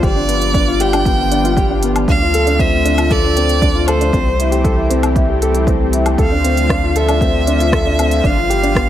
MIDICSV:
0, 0, Header, 1, 6, 480
1, 0, Start_track
1, 0, Tempo, 512821
1, 36, Time_signature, 4, 2, 24, 8
1, 8324, End_track
2, 0, Start_track
2, 0, Title_t, "Violin"
2, 0, Program_c, 0, 40
2, 36, Note_on_c, 0, 74, 112
2, 761, Note_on_c, 0, 79, 105
2, 775, Note_off_c, 0, 74, 0
2, 1718, Note_off_c, 0, 79, 0
2, 1960, Note_on_c, 0, 77, 115
2, 2439, Note_on_c, 0, 76, 113
2, 2453, Note_off_c, 0, 77, 0
2, 2917, Note_on_c, 0, 74, 116
2, 2931, Note_off_c, 0, 76, 0
2, 3629, Note_on_c, 0, 72, 98
2, 3643, Note_off_c, 0, 74, 0
2, 4592, Note_off_c, 0, 72, 0
2, 5816, Note_on_c, 0, 77, 91
2, 6528, Note_on_c, 0, 76, 97
2, 6542, Note_off_c, 0, 77, 0
2, 7731, Note_on_c, 0, 77, 105
2, 7745, Note_off_c, 0, 76, 0
2, 8324, Note_off_c, 0, 77, 0
2, 8324, End_track
3, 0, Start_track
3, 0, Title_t, "Upright piano"
3, 0, Program_c, 1, 0
3, 0, Control_c, 1, 64, 127
3, 28, Note_on_c, 1, 67, 95
3, 48, Control_c, 1, 64, 0
3, 145, Note_on_c, 1, 62, 73
3, 146, Note_off_c, 1, 67, 0
3, 215, Control_c, 1, 64, 127
3, 263, Note_on_c, 1, 59, 67
3, 264, Note_off_c, 1, 62, 0
3, 383, Note_off_c, 1, 59, 0
3, 511, Note_on_c, 1, 62, 78
3, 627, Note_off_c, 1, 62, 0
3, 634, Note_on_c, 1, 65, 80
3, 703, Note_off_c, 1, 65, 0
3, 752, Note_on_c, 1, 67, 102
3, 868, Note_off_c, 1, 67, 0
3, 875, Note_on_c, 1, 62, 78
3, 989, Note_off_c, 1, 62, 0
3, 995, Note_on_c, 1, 59, 80
3, 1109, Note_off_c, 1, 59, 0
3, 1232, Note_on_c, 1, 62, 77
3, 1348, Note_off_c, 1, 62, 0
3, 1359, Note_on_c, 1, 65, 74
3, 1425, Note_off_c, 1, 65, 0
3, 1474, Note_on_c, 1, 67, 101
3, 1589, Note_off_c, 1, 67, 0
3, 1596, Note_on_c, 1, 62, 74
3, 1710, Note_off_c, 1, 62, 0
3, 1717, Note_on_c, 1, 59, 73
3, 1830, Note_off_c, 1, 59, 0
3, 1953, Note_on_c, 1, 62, 74
3, 1966, Control_c, 1, 64, 0
3, 2068, Note_off_c, 1, 62, 0
3, 2077, Note_on_c, 1, 65, 72
3, 2137, Control_c, 1, 64, 127
3, 2145, Note_off_c, 1, 65, 0
3, 2193, Note_on_c, 1, 69, 96
3, 2308, Note_off_c, 1, 69, 0
3, 2311, Note_on_c, 1, 62, 74
3, 2427, Note_off_c, 1, 62, 0
3, 2432, Note_on_c, 1, 60, 82
3, 2548, Note_off_c, 1, 60, 0
3, 2670, Note_on_c, 1, 62, 74
3, 2787, Note_off_c, 1, 62, 0
3, 2791, Note_on_c, 1, 65, 78
3, 2862, Note_off_c, 1, 65, 0
3, 2911, Note_on_c, 1, 69, 105
3, 3027, Note_off_c, 1, 69, 0
3, 3027, Note_on_c, 1, 62, 73
3, 3145, Note_off_c, 1, 62, 0
3, 3147, Note_on_c, 1, 60, 74
3, 3265, Note_off_c, 1, 60, 0
3, 3394, Note_on_c, 1, 62, 82
3, 3509, Note_off_c, 1, 62, 0
3, 3512, Note_on_c, 1, 65, 77
3, 3582, Note_off_c, 1, 65, 0
3, 3636, Note_on_c, 1, 69, 100
3, 3750, Note_off_c, 1, 69, 0
3, 3753, Note_on_c, 1, 62, 77
3, 3863, Note_on_c, 1, 60, 81
3, 3868, Note_off_c, 1, 62, 0
3, 3890, Control_c, 1, 64, 0
3, 3983, Note_off_c, 1, 60, 0
3, 4065, Control_c, 1, 64, 127
3, 4113, Note_on_c, 1, 64, 70
3, 4227, Note_on_c, 1, 67, 77
3, 4228, Note_off_c, 1, 64, 0
3, 4299, Note_off_c, 1, 67, 0
3, 4345, Note_on_c, 1, 69, 91
3, 4464, Note_off_c, 1, 69, 0
3, 4465, Note_on_c, 1, 64, 75
3, 4584, Note_off_c, 1, 64, 0
3, 4586, Note_on_c, 1, 60, 79
3, 4705, Note_off_c, 1, 60, 0
3, 4830, Note_on_c, 1, 64, 81
3, 4947, Note_off_c, 1, 64, 0
3, 4953, Note_on_c, 1, 67, 73
3, 5023, Note_off_c, 1, 67, 0
3, 5074, Note_on_c, 1, 69, 93
3, 5189, Note_off_c, 1, 69, 0
3, 5192, Note_on_c, 1, 64, 73
3, 5308, Note_off_c, 1, 64, 0
3, 5311, Note_on_c, 1, 60, 81
3, 5427, Note_off_c, 1, 60, 0
3, 5552, Note_on_c, 1, 64, 76
3, 5668, Note_off_c, 1, 64, 0
3, 5671, Note_on_c, 1, 67, 71
3, 5742, Note_off_c, 1, 67, 0
3, 5788, Note_on_c, 1, 69, 95
3, 5809, Control_c, 1, 64, 0
3, 5906, Note_off_c, 1, 69, 0
3, 5915, Note_on_c, 1, 62, 70
3, 5988, Control_c, 1, 64, 127
3, 6029, Note_off_c, 1, 62, 0
3, 6030, Note_on_c, 1, 60, 68
3, 6147, Note_off_c, 1, 60, 0
3, 6270, Note_on_c, 1, 62, 78
3, 6387, Note_off_c, 1, 62, 0
3, 6397, Note_on_c, 1, 65, 72
3, 6465, Note_off_c, 1, 65, 0
3, 6515, Note_on_c, 1, 69, 100
3, 6629, Note_off_c, 1, 69, 0
3, 6638, Note_on_c, 1, 62, 78
3, 6751, Note_off_c, 1, 62, 0
3, 6757, Note_on_c, 1, 60, 85
3, 6870, Note_off_c, 1, 60, 0
3, 6996, Note_on_c, 1, 62, 75
3, 7110, Note_off_c, 1, 62, 0
3, 7111, Note_on_c, 1, 65, 75
3, 7182, Note_off_c, 1, 65, 0
3, 7231, Note_on_c, 1, 69, 101
3, 7347, Note_off_c, 1, 69, 0
3, 7361, Note_on_c, 1, 62, 78
3, 7472, Note_off_c, 1, 62, 0
3, 7480, Note_on_c, 1, 60, 70
3, 7592, Note_off_c, 1, 60, 0
3, 7717, Note_on_c, 1, 62, 82
3, 7729, Control_c, 1, 64, 0
3, 7830, Note_off_c, 1, 62, 0
3, 7835, Note_on_c, 1, 65, 72
3, 7894, Control_c, 1, 64, 127
3, 7904, Note_off_c, 1, 65, 0
3, 7954, Note_on_c, 1, 67, 101
3, 8069, Note_off_c, 1, 67, 0
3, 8079, Note_on_c, 1, 62, 76
3, 8191, Note_off_c, 1, 62, 0
3, 8197, Note_on_c, 1, 59, 81
3, 8310, Note_off_c, 1, 59, 0
3, 8324, End_track
4, 0, Start_track
4, 0, Title_t, "Analog synth pad"
4, 0, Program_c, 2, 89
4, 0, Note_on_c, 2, 53, 72
4, 0, Note_on_c, 2, 65, 83
4, 38, Note_on_c, 2, 59, 69
4, 39, Note_on_c, 2, 50, 84
4, 40, Note_on_c, 2, 55, 76
4, 1938, Note_off_c, 2, 59, 0
4, 1939, Note_off_c, 2, 55, 0
4, 1962, Note_on_c, 2, 60, 71
4, 1967, Note_on_c, 2, 57, 73
4, 3837, Note_off_c, 2, 53, 0
4, 3840, Note_off_c, 2, 50, 0
4, 3840, Note_off_c, 2, 65, 0
4, 3860, Note_off_c, 2, 60, 0
4, 3862, Note_off_c, 2, 57, 0
4, 3880, Note_on_c, 2, 52, 82
4, 3881, Note_on_c, 2, 67, 87
4, 3883, Note_on_c, 2, 55, 68
4, 3883, Note_on_c, 2, 57, 70
4, 3886, Note_on_c, 2, 60, 73
4, 5778, Note_off_c, 2, 52, 0
4, 5779, Note_off_c, 2, 67, 0
4, 5780, Note_off_c, 2, 55, 0
4, 5803, Note_on_c, 2, 50, 75
4, 5803, Note_on_c, 2, 53, 71
4, 5804, Note_on_c, 2, 65, 84
4, 7682, Note_off_c, 2, 57, 0
4, 7683, Note_off_c, 2, 60, 0
4, 7725, Note_on_c, 2, 55, 76
4, 7725, Note_on_c, 2, 59, 76
4, 8324, Note_off_c, 2, 50, 0
4, 8324, Note_off_c, 2, 53, 0
4, 8324, Note_off_c, 2, 55, 0
4, 8324, Note_off_c, 2, 59, 0
4, 8324, Note_off_c, 2, 65, 0
4, 8324, End_track
5, 0, Start_track
5, 0, Title_t, "Analog synth bass"
5, 0, Program_c, 3, 38
5, 30, Note_on_c, 3, 31, 88
5, 1929, Note_off_c, 3, 31, 0
5, 1948, Note_on_c, 3, 38, 87
5, 3848, Note_off_c, 3, 38, 0
5, 3870, Note_on_c, 3, 36, 95
5, 5769, Note_off_c, 3, 36, 0
5, 5788, Note_on_c, 3, 38, 86
5, 7687, Note_off_c, 3, 38, 0
5, 7713, Note_on_c, 3, 31, 87
5, 8324, Note_off_c, 3, 31, 0
5, 8324, End_track
6, 0, Start_track
6, 0, Title_t, "Drums"
6, 28, Note_on_c, 9, 36, 111
6, 32, Note_on_c, 9, 42, 29
6, 121, Note_off_c, 9, 36, 0
6, 125, Note_off_c, 9, 42, 0
6, 269, Note_on_c, 9, 42, 70
6, 363, Note_off_c, 9, 42, 0
6, 390, Note_on_c, 9, 42, 43
6, 483, Note_off_c, 9, 42, 0
6, 507, Note_on_c, 9, 36, 107
6, 509, Note_on_c, 9, 42, 32
6, 601, Note_off_c, 9, 36, 0
6, 603, Note_off_c, 9, 42, 0
6, 750, Note_on_c, 9, 42, 75
6, 843, Note_off_c, 9, 42, 0
6, 873, Note_on_c, 9, 42, 44
6, 873, Note_on_c, 9, 77, 65
6, 967, Note_off_c, 9, 42, 0
6, 967, Note_off_c, 9, 77, 0
6, 987, Note_on_c, 9, 36, 101
6, 993, Note_on_c, 9, 42, 31
6, 1081, Note_off_c, 9, 36, 0
6, 1087, Note_off_c, 9, 42, 0
6, 1231, Note_on_c, 9, 42, 71
6, 1325, Note_off_c, 9, 42, 0
6, 1357, Note_on_c, 9, 42, 45
6, 1450, Note_off_c, 9, 42, 0
6, 1467, Note_on_c, 9, 36, 105
6, 1473, Note_on_c, 9, 42, 33
6, 1560, Note_off_c, 9, 36, 0
6, 1567, Note_off_c, 9, 42, 0
6, 1709, Note_on_c, 9, 42, 75
6, 1802, Note_off_c, 9, 42, 0
6, 1831, Note_on_c, 9, 42, 44
6, 1831, Note_on_c, 9, 77, 60
6, 1925, Note_off_c, 9, 42, 0
6, 1925, Note_off_c, 9, 77, 0
6, 1947, Note_on_c, 9, 36, 115
6, 1952, Note_on_c, 9, 42, 30
6, 2040, Note_off_c, 9, 36, 0
6, 2046, Note_off_c, 9, 42, 0
6, 2190, Note_on_c, 9, 42, 71
6, 2284, Note_off_c, 9, 42, 0
6, 2312, Note_on_c, 9, 42, 43
6, 2405, Note_off_c, 9, 42, 0
6, 2427, Note_on_c, 9, 36, 105
6, 2432, Note_on_c, 9, 42, 34
6, 2520, Note_off_c, 9, 36, 0
6, 2526, Note_off_c, 9, 42, 0
6, 2673, Note_on_c, 9, 42, 72
6, 2766, Note_off_c, 9, 42, 0
6, 2790, Note_on_c, 9, 42, 44
6, 2790, Note_on_c, 9, 77, 64
6, 2884, Note_off_c, 9, 42, 0
6, 2884, Note_off_c, 9, 77, 0
6, 2907, Note_on_c, 9, 36, 115
6, 2907, Note_on_c, 9, 42, 33
6, 3000, Note_off_c, 9, 42, 0
6, 3001, Note_off_c, 9, 36, 0
6, 3152, Note_on_c, 9, 42, 71
6, 3245, Note_off_c, 9, 42, 0
6, 3270, Note_on_c, 9, 42, 48
6, 3363, Note_off_c, 9, 42, 0
6, 3387, Note_on_c, 9, 36, 110
6, 3390, Note_on_c, 9, 42, 35
6, 3481, Note_off_c, 9, 36, 0
6, 3484, Note_off_c, 9, 42, 0
6, 3630, Note_on_c, 9, 42, 73
6, 3630, Note_on_c, 9, 77, 64
6, 3724, Note_off_c, 9, 42, 0
6, 3724, Note_off_c, 9, 77, 0
6, 3754, Note_on_c, 9, 42, 44
6, 3848, Note_off_c, 9, 42, 0
6, 3867, Note_on_c, 9, 36, 107
6, 3873, Note_on_c, 9, 42, 28
6, 3961, Note_off_c, 9, 36, 0
6, 3966, Note_off_c, 9, 42, 0
6, 4116, Note_on_c, 9, 42, 72
6, 4209, Note_off_c, 9, 42, 0
6, 4233, Note_on_c, 9, 42, 44
6, 4326, Note_off_c, 9, 42, 0
6, 4347, Note_on_c, 9, 36, 111
6, 4349, Note_on_c, 9, 42, 32
6, 4441, Note_off_c, 9, 36, 0
6, 4443, Note_off_c, 9, 42, 0
6, 4592, Note_on_c, 9, 42, 75
6, 4685, Note_off_c, 9, 42, 0
6, 4710, Note_on_c, 9, 42, 44
6, 4710, Note_on_c, 9, 77, 62
6, 4804, Note_off_c, 9, 42, 0
6, 4804, Note_off_c, 9, 77, 0
6, 4827, Note_on_c, 9, 36, 111
6, 4829, Note_on_c, 9, 42, 31
6, 4921, Note_off_c, 9, 36, 0
6, 4922, Note_off_c, 9, 42, 0
6, 5074, Note_on_c, 9, 42, 68
6, 5167, Note_off_c, 9, 42, 0
6, 5191, Note_on_c, 9, 42, 43
6, 5284, Note_off_c, 9, 42, 0
6, 5307, Note_on_c, 9, 36, 111
6, 5314, Note_on_c, 9, 42, 31
6, 5400, Note_off_c, 9, 36, 0
6, 5408, Note_off_c, 9, 42, 0
6, 5551, Note_on_c, 9, 42, 71
6, 5645, Note_off_c, 9, 42, 0
6, 5670, Note_on_c, 9, 42, 43
6, 5670, Note_on_c, 9, 77, 57
6, 5764, Note_off_c, 9, 42, 0
6, 5764, Note_off_c, 9, 77, 0
6, 5787, Note_on_c, 9, 36, 106
6, 5789, Note_on_c, 9, 42, 29
6, 5880, Note_off_c, 9, 36, 0
6, 5883, Note_off_c, 9, 42, 0
6, 6032, Note_on_c, 9, 42, 75
6, 6126, Note_off_c, 9, 42, 0
6, 6153, Note_on_c, 9, 42, 42
6, 6246, Note_off_c, 9, 42, 0
6, 6266, Note_on_c, 9, 36, 106
6, 6273, Note_on_c, 9, 37, 93
6, 6273, Note_on_c, 9, 42, 33
6, 6360, Note_off_c, 9, 36, 0
6, 6367, Note_off_c, 9, 37, 0
6, 6367, Note_off_c, 9, 42, 0
6, 6512, Note_on_c, 9, 42, 72
6, 6606, Note_off_c, 9, 42, 0
6, 6632, Note_on_c, 9, 42, 43
6, 6632, Note_on_c, 9, 77, 65
6, 6726, Note_off_c, 9, 42, 0
6, 6726, Note_off_c, 9, 77, 0
6, 6748, Note_on_c, 9, 36, 96
6, 6755, Note_on_c, 9, 42, 30
6, 6841, Note_off_c, 9, 36, 0
6, 6849, Note_off_c, 9, 42, 0
6, 6995, Note_on_c, 9, 42, 74
6, 7089, Note_off_c, 9, 42, 0
6, 7117, Note_on_c, 9, 42, 42
6, 7211, Note_off_c, 9, 42, 0
6, 7229, Note_on_c, 9, 36, 104
6, 7235, Note_on_c, 9, 37, 95
6, 7235, Note_on_c, 9, 42, 32
6, 7323, Note_off_c, 9, 36, 0
6, 7329, Note_off_c, 9, 37, 0
6, 7329, Note_off_c, 9, 42, 0
6, 7479, Note_on_c, 9, 42, 74
6, 7479, Note_on_c, 9, 77, 61
6, 7573, Note_off_c, 9, 42, 0
6, 7573, Note_off_c, 9, 77, 0
6, 7594, Note_on_c, 9, 42, 39
6, 7688, Note_off_c, 9, 42, 0
6, 7711, Note_on_c, 9, 36, 107
6, 7719, Note_on_c, 9, 42, 28
6, 7805, Note_off_c, 9, 36, 0
6, 7813, Note_off_c, 9, 42, 0
6, 7962, Note_on_c, 9, 42, 71
6, 8055, Note_off_c, 9, 42, 0
6, 8083, Note_on_c, 9, 42, 40
6, 8176, Note_off_c, 9, 42, 0
6, 8191, Note_on_c, 9, 36, 99
6, 8203, Note_on_c, 9, 37, 92
6, 8203, Note_on_c, 9, 42, 31
6, 8285, Note_off_c, 9, 36, 0
6, 8297, Note_off_c, 9, 37, 0
6, 8297, Note_off_c, 9, 42, 0
6, 8324, End_track
0, 0, End_of_file